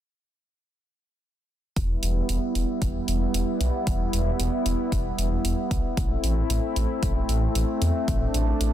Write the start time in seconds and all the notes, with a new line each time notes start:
1.76 E1 G3 B3 E4, kick, closed hi-hat
2.03 E1, closed hi-hat
2.29 E1, closed hi-hat
2.55 E1, closed hi-hat
2.82 E1, kick, closed hi-hat
3.08 E1, closed hi-hat
3.34 E1, closed hi-hat
3.61 B1, closed hi-hat
3.87 E1, kick, closed hi-hat
4.13 E1, closed hi-hat
4.40 E1, closed hi-hat
4.66 E1, closed hi-hat
4.92 E1, kick, closed hi-hat
5.18 E1, closed hi-hat
5.45 E1, closed hi-hat
5.71 B1, kick, closed hi-hat
5.97 A1 A3 C4 E4, kick, closed hi-hat
6.24 A1, closed hi-hat
6.50 A1, closed hi-hat
6.76 A1, closed hi-hat
7.03 A1, kick, closed hi-hat
7.29 A1, closed hi-hat
7.55 A1, closed hi-hat
7.82 E2, closed hi-hat
8.08 A1 D4, kick, closed hi-hat
8.34 A1, closed hi-hat
8.61 A1, closed hi-hat